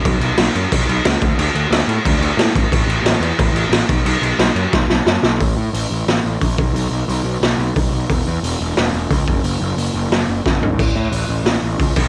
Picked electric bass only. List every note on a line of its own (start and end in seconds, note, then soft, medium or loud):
0.05 0.15 B1 medium
0.20 0.31 B1 medium
0.38 0.48 B1 medium
0.55 0.65 F#2 loud
0.72 0.82 B1 medium
0.89 0.99 B1 medium
1.05 1.15 C#2 loud
1.22 1.32 D2 loud
1.38 1.48 D2 loud
1.55 1.65 D2 medium
1.71 1.81 D2 medium
1.87 1.98 A2 medium
2.06 2.16 D2 medium
2.19 2.30 D2 loud
2.37 2.48 A2 loud
2.55 2.65 G#1 loud
2.72 2.82 A1 loud
2.87 2.98 A1 medium
3.04 3.14 A1 medium
3.20 3.31 E2 loud
3.39 3.49 A1 medium
3.54 3.64 A1 loud
3.70 3.81 A1 loud
3.89 3.99 B1 medium
4.05 4.16 B1 medium
4.22 4.32 B1 medium
4.39 4.49 B1 loud
4.55 4.65 F#2 medium
4.73 4.83 B1 loud
4.90 5.00 B1 medium
5.06 5.16 F#2 medium
5.23 5.41 B1 loud
5.41 5.52 A1 medium
5.57 5.68 A2 medium
5.73 5.85 A1 medium
5.91 6.02 A1 medium
6.07 6.19 A1 medium
6.25 6.36 A1 medium
6.42 6.53 A#1 medium
6.58 6.70 B1 medium
6.74 6.86 B1 medium
6.91 7.03 B1 medium
7.08 7.20 B1 medium
7.24 7.36 B1 medium
7.41 7.53 B1 medium
7.58 7.70 B1 medium
7.76 7.87 B1 medium
7.92 8.04 B1 medium
8.10 8.21 E1 medium
8.27 8.38 E2 medium
8.43 8.55 E1 medium
8.60 8.72 E1 medium
8.77 8.89 E1 medium
8.94 9.06 E1 medium
9.10 9.22 C#2 medium
9.28 9.39 F#1 medium
9.44 9.56 F#1 medium
9.60 9.72 F#1 medium
9.77 9.89 F#1 medium
9.94 10.06 F#1 medium
10.11 10.23 F#1 medium
10.28 10.40 F#1 medium
10.46 10.57 F#1 medium
10.62 10.79 G#1 medium
10.79 10.90 A1 loud
10.96 11.07 A2 medium
11.12 11.24 A1 medium
11.29 11.41 A1 medium
11.44 11.57 A1 medium
11.62 11.74 A1 medium
11.79 11.91 C#2 loud
11.97 12.08 B1 medium